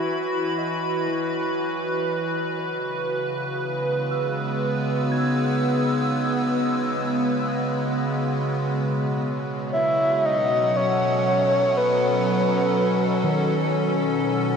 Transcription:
0.00 2.59 E3 medium
0.00 14.57 F#3 medium
0.00 2.58 E4 medium
0.00 4.50 F#4 medium
0.00 11.04 B4 medium
0.00 3.97 B5 medium
0.58 2.79 D#5 medium
1.08 3.91 E3 medium
2.59 8.70 C#3 medium
2.59 5.44 B4 medium
3.23 8.69 G#3 medium
3.52 11.13 B3 medium
4.10 5.32 F#4 soft
4.10 8.69 E6 medium
4.10 5.32 E6 medium
5.11 7.99 D#4 soft
5.11 7.99 G#6 medium
8.71 14.57 B2 loud
9.25 14.57 F#3 medium
9.60 14.57 F#5 medium
9.72 12.55 C#5 medium
9.72 10.27 E5 loud
9.88 14.57 C#4 medium
9.96 14.57 A4 medium
10.26 10.78 D#5 loud
10.76 11.79 C#5 medium
11.77 13.26 B4 medium
13.24 14.57 D#3 medium

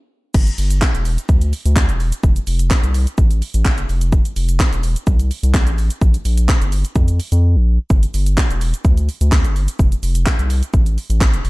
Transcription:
0.34 0.50 G1 loud
0.34 kick loud
0.34 crash loud
0.34 shaker medium
0.47 closed hi-hat medium
0.47 shaker medium
0.58 0.82 G1 medium
0.58 open hi-hat medium
0.58 shaker medium
0.70 closed hi-hat medium
0.70 shaker medium
0.82 kick loud
0.82 snare medium
0.82 clap loud
0.82 shaker medium
0.94 1.17 E1 loud
0.94 closed hi-hat medium
0.94 shaker medium
1.05 open hi-hat medium
1.05 shaker medium
1.18 closed hi-hat medium
1.18 shaker medium
1.29 1.53 D2 loud
1.29 kick loud
1.29 shaker medium
1.41 closed hi-hat medium
1.41 shaker medium
1.53 open hi-hat medium
1.53 shaker soft
1.65 1.90 D2 medium
1.65 closed hi-hat medium
1.65 shaker medium
1.76 kick loud
1.76 snare medium
1.76 clap loud
1.76 shaker medium
1.89 2.12 E1 medium
1.89 closed hi-hat medium
1.89 shaker medium
2.00 open hi-hat medium
2.00 shaker soft
2.12 closed hi-hat medium
2.12 shaker medium
2.23 2.39 F1 loud
2.23 kick loud
2.23 shaker medium
2.36 closed hi-hat medium
2.36 shaker medium
2.47 2.71 F1 medium
2.47 open hi-hat medium
2.47 shaker medium
2.59 closed hi-hat medium
2.59 shaker medium
2.71 kick loud
2.71 snare medium
2.71 clap loud
2.71 shaker medium
2.83 3.06 C2 loud
2.83 closed hi-hat medium
2.83 shaker medium
2.94 open hi-hat medium
2.94 shaker medium
3.07 closed hi-hat medium
3.07 shaker medium
3.18 3.42 A1 loud
3.18 kick loud
3.18 shaker medium
3.31 closed hi-hat medium
3.31 shaker medium
3.42 open hi-hat medium
3.42 shaker soft
3.54 3.79 A1 medium
3.54 closed hi-hat medium
3.54 shaker medium
3.65 kick loud
3.65 snare medium
3.65 clap loud
3.65 shaker medium
3.78 3.85 F1 medium
3.78 closed hi-hat medium
3.78 shaker medium
3.89 4.20 F1 loud
3.89 open hi-hat medium
3.89 shaker soft
4.01 closed hi-hat medium
4.01 shaker medium
4.12 kick loud
4.12 shaker medium
4.25 closed hi-hat medium
4.25 shaker medium
4.36 4.60 F1 medium
4.36 open hi-hat medium
4.36 shaker medium
4.49 closed hi-hat medium
4.49 shaker medium
4.60 kick loud
4.60 snare medium
4.60 clap loud
4.60 shaker medium
4.72 4.95 E1 loud
4.72 closed hi-hat medium
4.72 shaker medium
4.83 open hi-hat medium
4.83 shaker medium
4.96 closed hi-hat medium
4.96 shaker medium
5.07 5.31 C2 loud
5.07 kick loud
5.07 shaker medium
5.19 closed hi-hat medium
5.19 shaker medium
5.31 open hi-hat medium
5.31 shaker soft
5.43 5.68 C2 medium
5.43 closed hi-hat medium
5.43 shaker medium
5.54 kick loud
5.54 snare medium
5.54 clap loud
5.54 shaker medium
5.67 5.90 A1 medium
5.67 closed hi-hat medium
5.67 shaker medium
5.78 open hi-hat medium
5.78 shaker soft
5.90 closed hi-hat medium
5.90 shaker medium
6.01 6.17 A#1 loud
6.01 kick loud
6.01 shaker medium
6.14 closed hi-hat medium
6.14 shaker medium
6.25 6.49 A#1 medium
6.25 open hi-hat medium
6.25 shaker medium
6.38 closed hi-hat medium
6.38 shaker medium
6.49 kick loud
6.49 snare medium
6.49 clap loud
6.49 shaker medium
6.61 6.84 G1 loud
6.61 closed hi-hat medium
6.61 shaker medium
6.72 open hi-hat medium
6.72 shaker medium
6.85 closed hi-hat medium
6.85 shaker medium
6.95 7.20 F2 loud
6.95 kick loud
6.95 shaker medium
7.08 closed hi-hat medium
7.08 shaker medium
7.20 open hi-hat medium
7.20 shaker soft
7.32 7.57 F2 medium
7.32 closed hi-hat medium
7.32 shaker medium
7.56 7.79 A#1 medium
7.90 8.06 G1 loud
7.90 kick loud
7.90 shaker medium
8.03 closed hi-hat medium
8.03 shaker medium
8.14 8.38 G1 medium
8.14 open hi-hat medium
8.14 shaker medium
8.26 closed hi-hat medium
8.26 shaker medium
8.38 kick loud
8.38 snare medium
8.38 clap loud
8.38 shaker medium
8.50 8.73 E1 loud
8.50 closed hi-hat medium
8.50 shaker medium
8.61 open hi-hat medium
8.61 shaker medium
8.74 closed hi-hat medium
8.74 shaker medium
8.85 9.09 D2 loud
8.85 kick loud
8.85 shaker medium
8.97 closed hi-hat medium
8.97 shaker medium
9.09 open hi-hat medium
9.09 shaker soft
9.21 9.46 D2 medium
9.21 closed hi-hat medium
9.21 shaker medium
9.32 kick loud
9.32 snare medium
9.32 clap loud
9.32 shaker medium
9.44 9.68 G1 medium
9.44 closed hi-hat medium
9.44 shaker medium
9.56 open hi-hat medium
9.56 shaker soft
9.68 closed hi-hat medium
9.68 shaker medium
9.79 9.95 F1 loud
9.79 kick loud
9.79 shaker medium
9.92 closed hi-hat medium
9.92 shaker medium
10.03 10.27 F1 medium
10.03 open hi-hat medium
10.03 shaker medium
10.15 closed hi-hat medium
10.15 shaker medium
10.26 kick loud
10.26 snare medium
10.26 clap loud
10.26 shaker medium
10.39 10.62 C2 loud
10.39 closed hi-hat medium
10.39 shaker medium
10.50 open hi-hat medium
10.50 shaker medium
10.63 closed hi-hat medium
10.63 shaker medium
10.74 10.98 A1 loud
10.74 kick loud
10.74 shaker medium
10.86 closed hi-hat medium
10.86 shaker medium
10.98 open hi-hat medium
10.98 shaker soft
11.10 11.35 A1 medium
11.10 closed hi-hat medium
11.10 shaker medium
11.21 kick loud
11.21 snare medium
11.21 clap loud
11.21 shaker medium
11.33 11.41 F1 medium
11.33 closed hi-hat medium
11.33 shaker medium
11.45 11.50 F1 loud
11.45 open hi-hat medium
11.45 shaker soft

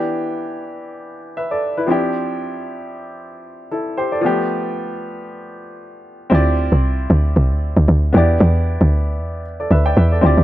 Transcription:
0.00 1.83 E3 medium
0.00 1.84 B3 medium
0.00 1.85 D4 medium
0.00 1.34 G4 medium
1.37 1.50 B4 medium
1.37 1.50 E5 medium
1.51 1.76 A4 medium
1.51 1.76 D5 medium
1.77 1.89 E4 medium
1.77 2.02 B4 medium
1.87 3.92 F3 medium
1.87 3.93 C4 medium
1.87 3.93 D4 medium
1.87 3.68 E4 medium
1.91 3.69 G4 medium
3.71 3.96 E4 medium
3.71 3.96 A4 medium
3.97 4.11 G4 medium
3.97 4.11 C5 medium
4.12 4.37 A4 medium
4.12 4.36 D5 medium
4.21 6.27 F3 medium
4.21 6.28 A3 medium
4.21 6.29 B3 medium
4.26 6.29 G4 medium
6.30 6.70 D2 loud
6.30 8.10 C4 medium
6.30 8.10 E4 medium
6.30 8.11 F4 medium
6.30 8.12 G4 medium
6.35 8.12 D5 medium
6.72 7.08 C2 medium
7.10 7.34 D2 loud
7.36 7.52 C2 medium
7.50 7.75 D2 medium
7.77 7.88 D2 medium
7.88 8.13 D2 medium
8.13 8.39 E2 loud
8.13 9.41 B3 medium
8.13 9.42 D4 medium
8.13 9.43 E4 medium
8.13 9.43 G4 medium
8.18 9.44 D5 medium
8.40 8.78 E2 loud
8.81 9.20 D2 loud
9.19 9.68 E2 loud
9.60 9.71 A4 medium
9.60 9.71 D5 medium
9.71 9.95 D2 medium
9.71 9.85 B4 medium
9.71 9.85 E5 medium
9.86 9.97 D5 medium
9.86 9.97 G5 medium
9.97 10.21 E2 loud
9.97 10.11 B4 medium
9.97 10.11 E5 medium
10.12 10.37 A4 medium
10.12 10.25 D5 medium
10.21 10.37 D2 loud
10.21 10.44 C4 medium
10.21 10.44 E4 medium
10.21 10.44 F4 medium
10.21 10.44 G4 medium
10.26 10.44 D5 medium
10.37 10.44 D2 medium

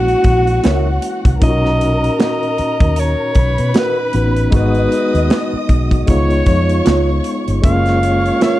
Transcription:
0.00 0.14 A#1 medium
0.00 1.39 E3 medium
0.00 1.37 G#3 medium
0.00 1.37 A#3 medium
0.00 1.38 C#4 medium
0.00 4.49 C#4 medium
0.00 1.42 E4 medium
0.00 1.00 F#4 loud
0.00 1.38 F#4 medium
0.00 1.38 F#5 medium
0.08 closed hi-hat soft
0.24 0.58 A#1 loud
0.24 kick medium
0.24 closed hi-hat medium
0.47 closed hi-hat medium
0.64 0.98 C#2 loud
0.64 0.87 E4 medium
0.64 0.87 A#4 medium
0.64 0.87 C#5 medium
0.64 snare loud
0.64 closed hi-hat medium
1.02 closed hi-hat medium
1.25 1.39 C2 loud
1.25 kick loud
1.25 closed hi-hat medium
1.40 2.08 B1 loud
1.40 4.09 A#2 medium
1.40 6.05 D#3 medium
1.40 4.09 C#4 medium
1.40 4.10 D#4 medium
1.40 4.50 D#4 medium
1.40 1.50 F4 medium
1.40 3.32 A#4 medium
1.40 2.16 D#5 loud
1.40 3.32 A#5 loud
1.40 kick loud
1.40 closed hi-hat medium
1.49 4.14 F#4 medium
1.65 snare soft
1.81 closed hi-hat medium
2.04 closed hi-hat soft
2.19 2.42 F#4 medium
2.19 2.42 A#4 medium
2.19 2.43 D#5 medium
2.19 3.01 D#5 loud
2.19 snare loud
2.19 closed hi-hat medium
2.43 closed hi-hat soft
2.58 muted fingered electric bass stroke soft
2.58 closed hi-hat medium
2.80 3.14 D#2 medium
2.80 kick loud
2.80 closed hi-hat medium
2.96 3.76 C#5 loud
2.96 closed hi-hat medium
3.35 3.55 B1 medium
3.35 4.50 B4 medium
3.35 4.50 B5 medium
3.35 kick medium
3.35 closed hi-hat medium
3.58 3.73 B2 loud
3.58 closed hi-hat medium
3.74 3.97 F#4 medium
3.74 3.98 A#4 medium
3.74 4.50 B4 medium
3.74 3.98 D#5 medium
3.74 snare loud
3.74 closed hi-hat medium
4.13 4.47 A1 medium
4.13 4.51 B3 soft
4.13 4.52 C#4 soft
4.13 4.52 D#4 soft
4.13 4.53 F#4 medium
4.13 closed hi-hat medium
4.36 closed hi-hat medium
4.51 4.86 G#1 loud
4.51 6.04 G#3 medium
4.51 6.07 G#3 medium
4.51 6.05 B3 medium
4.51 6.05 D#4 medium
4.51 6.07 F#4 medium
4.51 6.06 F#4 medium
4.51 6.05 D#5 medium
4.51 6.05 D#6 medium
4.51 kick loud
4.51 closed hi-hat medium
4.56 5.67 B4 loud
4.75 closed hi-hat soft
4.92 closed hi-hat medium
5.15 5.28 D#2 medium
5.15 closed hi-hat soft
5.30 5.53 F#4 medium
5.30 5.53 B4 medium
5.30 5.54 D#5 medium
5.30 snare loud
5.30 closed hi-hat medium
5.53 muted fingered electric bass stroke soft
5.69 6.02 B1 medium
5.69 kick medium
5.69 closed hi-hat medium
5.91 kick medium
5.91 closed hi-hat soft
6.06 6.41 C#2 loud
6.06 7.62 C#3 medium
6.06 7.60 G#3 medium
6.06 7.60 B3 medium
6.06 7.62 B3 medium
6.06 7.61 D#4 medium
6.06 7.62 F4 medium
6.06 7.61 F4 medium
6.06 7.61 C#5 medium
6.06 7.22 C#5 loud
6.06 7.61 C#6 medium
6.06 kick medium
6.06 closed hi-hat medium
6.30 closed hi-hat soft
6.46 6.80 F2 medium
6.46 kick medium
6.46 closed hi-hat medium
6.69 closed hi-hat medium
6.85 7.19 C#2 medium
6.85 7.08 F4 medium
6.85 7.09 B4 medium
6.85 7.09 C#5 medium
6.85 snare loud
6.85 closed hi-hat medium
7.24 closed hi-hat medium
7.48 7.62 G1 medium
7.48 closed hi-hat medium
7.62 8.30 F#1 loud
7.62 8.60 F#3 medium
7.62 8.60 G#3 medium
7.62 8.60 A#3 medium
7.62 8.60 C#4 medium
7.62 8.60 F4 medium
7.62 8.60 C#5 medium
7.62 8.38 F5 loud
7.62 8.60 C#6 loud
7.62 kick loud
7.62 closed hi-hat medium
7.86 snare soft
7.86 closed hi-hat soft
8.03 closed hi-hat medium
8.26 closed hi-hat soft
8.41 8.60 F4 medium
8.41 8.60 A#4 medium
8.41 8.60 C#5 medium
8.41 8.60 F5 loud
8.41 snare loud
8.41 closed hi-hat medium

